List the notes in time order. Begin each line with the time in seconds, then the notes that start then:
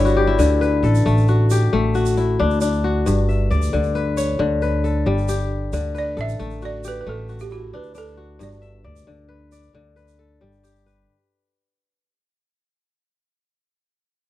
Already playing: G1 D3 G3 E4 G4 A4 B4 C#5
0.05 F#4, shaker
0.17 G4
0.27 E4
0.38 D2 D3, shaker
0.61 B4, shaker
0.83 A1 A4, shaker
0.95 shaker
1.06 A1 A3, shaker
1.18 shaker
1.28 F#4, shaker
1.50 G4, shaker
1.73 A1 A3
1.95 F#4, shaker
2.06 shaker
2.17 E4, shaker
2.39 D2 D4
2.51 shaker
2.61 D4, shaker
2.73 shaker
2.84 F#4
3.06 G1 G2, shaker
3.29 E5, shaker
3.51 D2 D5, shaker
3.62 shaker
3.73 D2 D3, shaker
3.83 shaker
3.95 B4, shaker
4.17 C#5, shaker
4.39 D2 D3
4.62 B4, shaker
4.84 A4, shaker
5.06 G1 G3
5.18 shaker
5.28 G4, shaker
5.40 shaker
5.73 D2 D3, shaker
5.95 B4 D5, shaker
6.17 A1 A4 E5, shaker
6.29 shaker
6.39 A1 A3, shaker
6.51 shaker
6.62 F#4 D5, shaker
6.84 G4, shaker
6.88 B4
7.01 B4
7.06 A1 A3 A4
7.29 F#4, shaker
7.39 G4, shaker
7.50 E4 F#4, shaker
7.73 D2 D4 B4
7.83 shaker
7.95 D4 A4, shaker
8.07 shaker
8.17 F#4
8.39 G1 G2 D5, shaker
8.52 shaker
8.62 E5, shaker
8.84 D2 D5
8.96 shaker
9.07 D2 D3
9.29 B4
9.52 D5, shaker
9.63 shaker
9.73 D2 D3
9.96 B4, shaker
10.08 shaker
10.19 A4
10.41 G1 G3
10.52 shaker
10.63 G4, shaker
10.86 B4, shaker